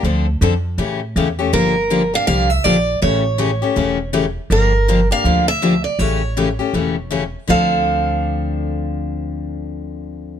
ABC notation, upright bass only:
X:1
M:4/4
L:1/8
Q:"Swing" 1/4=161
K:Dm
V:1 name="Upright bass" clef=bass
D,,2 F,,2 A,,2 E,,2 | G,,,4 C,,2 B,,,2 | A,,,4 E,,,4 | G,,,4 D,,4 |
A,,,4 E,,,4 | D,,8- | D,,8 |]